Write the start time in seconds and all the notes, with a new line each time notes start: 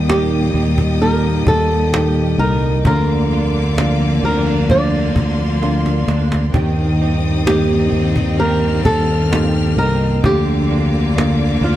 Already playing: D#2 A#2 D#3 G3 A#3 D#4 G4 D#5 G5 D#6
0.08 A#3 D#4 G4, cajon slap
0.54 D#2 D#4
0.78 cajon bass
1.01 A#3 D#4 G4 A#4
1.46 D#2 A4, cajon bass
1.69 cajon slap
1.93 A#3 D#4 G4, cajon slap
2.38 C2 D#4 A#4
2.85 D2 F2 D3 A#3 F4 A#4 D5 F5 D6, cajon bass
3.31 A#3 D4 F4, cajon slap
3.76 A#3 D4 F4, cajon slap
4.23 D2 C4 A#4
4.47 D4
4.68 F3 A#3 D4 F4 D5 C6, cajon bass
4.93 cajon slap
5.15 D2, cajon bass
5.38 cajon slap
5.61 A#3 D4 F4, cajon slap
5.63 cajon slap
5.86 cajon slap
6.08 D2 D4, cajon slap
6.32 cajon slap
6.54 D#2 G2 D#3 C4 G4 D#5 G5 D#6, cajon bass
7.00 A#3 D#4 G4, cajon slap
7.46 A#3 D#4 G4, cajon slap
7.92 D#2 D#4, cajon slap
8.16 cajon bass
8.39 A#3 D#4 G4 A#4 F6
8.85 D#2 A4, cajon bass
9.31 A#3 D#4 F4 G4, cajon slap
9.54 G4
9.77 C2 D#4 A#4
10.22 D2 F2 D3 A#3 F4 G4 D5 F5 D6, cajon bass
10.70 A#3 D4 F4, cajon slap
11.15 A#3 D4 F4, cajon slap
11.61 D2 D4 F4, cajon slap